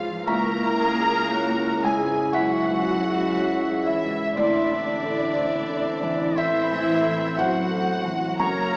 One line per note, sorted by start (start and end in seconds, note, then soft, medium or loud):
0.00 0.27 E2 medium
0.00 0.29 G#2 soft
0.00 0.27 E3 medium
0.00 0.23 F3 medium
0.00 0.30 E4 medium
0.00 0.23 F4 medium
0.00 0.30 G#4 soft
0.00 0.29 C#5 soft
0.00 0.23 F5 medium
0.25 4.32 C#2 loud
0.25 2.31 C#2 medium
0.25 1.83 A#3 loud
0.25 4.33 C#4 medium
0.25 4.33 E4 medium
0.25 0.82 A#4 medium
0.25 1.83 A#4 loud
0.25 0.69 E5 medium
0.25 1.79 A#5 loud
0.25 1.84 A#5 loud
0.25 0.76 C#6 medium
0.63 1.19 E4 medium
0.80 1.33 G#4 medium
0.99 1.53 G#4 medium
1.32 1.85 F#4 medium
1.32 1.87 C#5 medium
1.66 2.20 G#4 medium
1.82 2.34 G#3 medium
1.82 2.36 E4 medium
1.82 2.35 G#4 medium
1.82 2.35 G#5 medium
1.82 2.31 G#5 medium
1.82 2.35 G#5 medium
2.01 2.55 G#2 medium
2.33 3.86 F#3 medium
2.33 2.89 E4 medium
2.33 3.86 F#4 loud
2.33 2.73 E5 medium
2.33 6.39 E5 loud
2.33 3.81 F#5 loud
2.33 3.86 F#5 loud
2.33 2.81 C#6 medium
2.69 3.22 G#2 medium
3.01 3.55 G#4 medium
3.36 3.90 C#5 medium
3.70 4.23 G#4 medium
3.84 4.35 E3 medium
3.84 4.35 E4 medium
3.84 4.35 E5 medium
3.84 4.33 E5 loud
4.05 4.37 G#2 medium
4.35 8.35 A1 medium
4.35 6.34 A2 medium
4.35 6.33 D3 medium
4.35 8.21 C4 medium
4.35 6.34 D4 medium
4.35 8.21 E4 medium
4.35 6.33 D5 loud
4.35 6.34 D5 loud
4.35 4.75 E5 medium
4.35 4.83 C6 medium
4.71 5.24 E4 medium
5.04 5.57 A4 medium
5.37 5.90 C5 medium
5.70 6.24 A4 medium
6.03 6.57 E3 medium
6.36 7.36 E3 loud
6.36 6.92 E4 medium
6.36 7.39 E4 loud
6.36 8.12 C5 loud
6.36 7.38 E5 loud
6.36 7.35 E5 loud
6.36 6.77 E5 loud
6.36 6.84 C6 medium
6.72 7.25 E3 medium
7.03 7.58 A4 medium
7.37 8.39 F#3 medium
7.37 8.40 F#4 medium
7.37 7.92 C5 medium
7.37 8.38 F#5 loud
7.37 8.39 F#5 loud
7.37 8.35 F#5 loud
7.71 8.25 A4 medium
8.05 8.39 E3 medium
8.37 8.77 F#1 loud
8.37 8.77 F#2 medium
8.37 8.77 A#3 loud
8.37 8.77 C#4 loud
8.37 8.77 F#4 medium
8.37 8.77 A#4 loud
8.37 8.77 C#5 medium
8.37 8.77 C#5 loud
8.37 8.77 A#5 loud
8.37 8.77 C#6 medium
8.72 8.77 F#4 medium